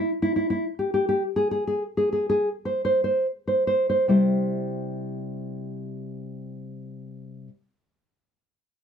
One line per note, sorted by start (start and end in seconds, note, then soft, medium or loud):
0.22 0.35 E4 medium
0.36 0.49 E4 medium
0.50 0.64 E4 medium
0.79 0.93 G4 soft
0.94 1.07 G4 medium
1.09 1.22 G4 medium
1.36 1.50 G#4 medium
1.51 1.66 G#4 medium
1.67 1.82 G#4 medium
1.97 2.11 G#4 medium
2.13 2.28 G#4 medium
2.29 2.48 G#4 medium
2.65 2.84 C5 medium
2.85 3.03 C5 medium
3.04 3.26 C5 medium
3.48 3.66 C5 soft
3.67 3.88 C5 medium
3.90 4.08 C5 medium
4.08 7.47 C3 soft
4.08 7.48 G3 soft
4.08 7.48 E4 soft
4.08 7.48 G4 soft
4.08 7.48 C5 soft